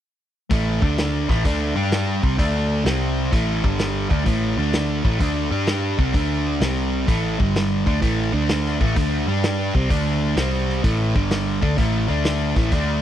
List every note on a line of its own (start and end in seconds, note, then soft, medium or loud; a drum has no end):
0.50 0.80 A1 medium
0.50 0.81 A2 medium
0.50 0.81 E3 medium
0.50 0.81 A3 medium
0.50 kick medium
0.50 open hi-hat soft
0.82 1.26 D2 medium
0.82 1.28 D3 medium
0.82 1.28 A3 medium
0.82 1.28 D4 loud
0.82 kick medium
0.98 snare loud
0.98 open hi-hat soft
1.29 1.43 A1 medium
1.29 1.44 A2 medium
1.29 1.44 E3 medium
1.29 1.45 A3 medium
1.29 kick medium
1.29 snare soft
1.45 1.74 D2 medium
1.45 1.75 D3 medium
1.45 1.76 A3 loud
1.45 1.75 D4 loud
1.45 kick loud
1.45 open hi-hat soft
1.76 2.19 G2 medium
1.76 2.22 G3 medium
1.76 2.22 D4 medium
1.76 2.22 G4 medium
1.92 snare loud
1.92 open hi-hat soft
2.22 2.38 C2 medium
2.22 2.37 C3 medium
2.22 2.38 G3 medium
2.22 2.38 C4 medium
2.22 kick medium
2.38 2.82 D2 medium
2.38 2.84 D3 medium
2.38 2.85 A3 medium
2.38 2.85 D4 medium
2.38 kick medium
2.38 open hi-hat soft
2.85 3.29 C2 medium
2.85 3.31 C3 medium
2.85 3.32 G3 medium
2.85 3.32 C4 loud
2.85 snare medium
2.85 open hi-hat soft
3.32 3.62 A1 medium
3.32 3.63 A2 medium
3.32 3.63 E3 loud
3.32 3.63 A3 loud
3.32 kick medium
3.32 open hi-hat soft
3.64 4.07 G1 medium
3.64 4.10 G2 medium
3.64 4.09 D3 medium
3.64 4.10 G3 medium
3.64 kick medium
3.79 snare loud
3.79 open hi-hat soft
4.10 4.25 D2 medium
4.10 4.25 D3 medium
4.10 4.25 A3 medium
4.10 4.26 D4 medium
4.10 kick medium
4.25 4.55 A1 medium
4.25 4.56 A2 medium
4.25 4.56 E3 medium
4.25 4.57 A3 loud
4.25 kick medium
4.25 open hi-hat soft
4.57 5.01 D2 medium
4.57 5.04 D3 medium
4.57 5.04 A3 medium
4.57 5.04 D4 medium
4.73 snare loud
4.73 open hi-hat soft
5.05 5.19 A1 medium
5.05 5.19 A2 medium
5.05 5.20 E3 medium
5.05 5.19 A3 loud
5.05 kick loud
5.20 5.49 D2 medium
5.20 5.50 D3 medium
5.20 5.51 A3 medium
5.20 5.51 D4 loud
5.20 kick medium
5.20 open hi-hat medium
5.51 5.95 G2 medium
5.51 5.97 G3 medium
5.51 5.98 D4 medium
5.51 5.98 G4 medium
5.67 snare loud
5.67 open hi-hat soft
5.98 6.13 C2 medium
5.98 6.13 C3 medium
5.98 6.14 G3 medium
5.98 6.14 C4 medium
5.98 kick medium
6.14 6.58 D2 medium
6.14 6.60 D3 medium
6.14 6.61 A3 medium
6.14 6.61 D4 medium
6.14 kick loud
6.14 open hi-hat soft
6.61 7.04 C2 medium
6.61 7.07 C3 medium
6.61 7.08 G3 medium
6.61 7.08 C4 medium
6.61 snare loud
6.61 open hi-hat soft
7.08 7.37 A1 medium
7.08 7.38 A2 medium
7.08 7.38 E3 loud
7.08 7.39 A3 loud
7.08 kick loud
7.08 open hi-hat soft
7.39 7.83 G1 medium
7.39 7.85 G2 medium
7.39 7.85 D3 medium
7.39 7.85 G3 medium
7.39 kick loud
7.56 snare loud
7.56 open hi-hat soft
7.86 8.01 D2 medium
7.86 8.00 D3 medium
7.86 8.00 A3 medium
7.86 8.01 D4 loud
7.86 kick loud
8.01 8.31 A1 medium
8.01 8.32 A2 medium
8.01 8.32 E3 loud
8.01 8.32 A3 loud
8.01 kick medium
8.01 open hi-hat soft
8.33 8.77 D2 medium
8.33 8.79 D3 medium
8.33 8.79 A3 medium
8.33 8.80 D4 medium
8.49 snare loud
8.49 open hi-hat soft
8.66 snare soft
8.80 8.95 A1 medium
8.80 8.95 A2 medium
8.80 8.96 E3 medium
8.80 8.95 A3 medium
8.80 kick medium
8.96 9.25 D2 medium
8.96 9.26 D3 medium
8.96 9.27 A3 medium
8.96 9.27 D4 loud
8.96 kick loud
8.96 open hi-hat soft
9.27 9.71 G2 medium
9.27 9.73 G3 medium
9.27 9.74 D4 medium
9.27 9.74 G4 medium
9.43 snare loud
9.43 open hi-hat soft
9.75 9.89 C2 medium
9.75 9.89 C3 medium
9.75 9.90 G3 medium
9.75 9.90 C4 medium
9.75 kick medium
9.90 10.34 D2 medium
9.90 10.36 D3 medium
9.90 10.37 A3 medium
9.90 10.37 D4 medium
9.90 kick medium
9.90 open hi-hat soft
10.36 10.80 C2 medium
10.36 10.83 C3 medium
10.36 10.83 G3 medium
10.36 10.84 C4 medium
10.36 snare loud
10.36 open hi-hat soft
10.53 snare soft
10.69 snare soft
10.83 11.13 A1 medium
10.83 11.14 A2 medium
10.83 11.14 E3 medium
10.83 11.15 A3 loud
10.83 kick medium
10.83 open hi-hat soft
11.15 11.59 G1 medium
11.15 11.61 G2 medium
11.15 11.60 D3 medium
11.15 11.61 G3 medium
11.15 kick loud
11.31 snare loud
11.31 open hi-hat soft
11.61 11.77 D2 medium
11.61 11.77 D3 medium
11.61 11.77 A3 loud
11.61 11.77 D4 loud
11.61 kick loud
11.77 12.07 A1 medium
11.77 12.08 A2 medium
11.77 12.09 E3 loud
11.77 12.08 A3 loud
11.77 kick medium
11.77 open hi-hat soft
12.09 12.53 D2 medium
12.09 12.55 D3 medium
12.09 12.55 A3 medium
12.09 12.55 D4 medium
12.25 snare loud
12.25 open hi-hat soft
12.56 12.71 A1 medium
12.56 12.71 A2 medium
12.56 12.71 E3 medium
12.56 12.72 A3 medium
12.56 kick loud
12.56 snare soft
12.71 13.01 D2 medium
12.71 13.02 D3 medium
12.71 13.02 A3 loud
12.71 13.02 D4 loud
12.71 kick loud
12.71 open hi-hat soft